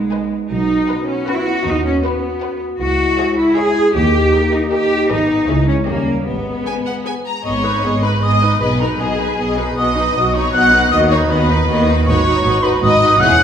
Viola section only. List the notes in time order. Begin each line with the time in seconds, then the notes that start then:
0.12 B4
0.89 B4
1.27 B4
2.04 B4
2.42 B4
3.18 G#4
3.56 G#4
4.33 G4
4.71 G4
5.10 G#4
5.49 G#4
5.87 G4
6.66 G#4
7.05 G#4
7.45 B3 G#4
7.64 D#4 B4
7.84 B3 G#4
8.03 D#4 B4
8.23 B3 G#4
8.42 D#4 B4
8.62 B3 G#4
8.80 D#4 B4
9.00 B3 G#4
9.19 D#4 B4
9.38 B3 G#4
9.57 D#4 B4
9.76 B3 F#4
9.96 D#4
10.15 B3 F#4
10.34 D#4
10.53 B3 F#4
10.72 D#4
10.92 B3 F#4
11.11 D#4
11.30 B3 F#4
11.50 D#4
11.69 B3 F#4
11.88 D#4
12.07 D#4 F#4
12.26 D#4 F#4
12.44 D#4 F#4
12.63 D#4 F#4
12.83 D#4 F#4
13.02 D#4 F#4
13.21 C#4 E4
13.40 C#4 E4